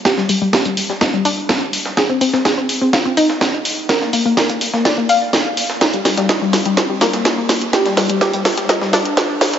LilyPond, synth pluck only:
\new Staff \with { instrumentName = "Synth pluck" } { \time 4/4 \key g \phrygian \tempo 4 = 125 << { g'8 r8 g'8 r8 ees'8 d'4. | aes'8 r8 aes'8 r8 f'8 ees'4. | bes'8 r8 bes'8 r8 d''8 f''4. | ees'8 r8 ees'8 r8 c'8 bes4. |
g'8 r8 g'8 r8 ees'8 d'4. | } \\ { r16 g16 g16 g16 r16 g16 r16 g16 r16 g16 r4. | r16 c'16 c'16 c'16 r16 c'16 r16 c'16 r16 c'16 r4. | r16 bes16 bes16 bes16 r16 bes16 r16 bes16 r16 bes16 r4. | r16 g16 g16 g16 r16 g16 r16 g16 r16 g16 r4. |
r16 g16 g16 g16 r16 g16 r16 g16 r16 g16 r4. | } >> }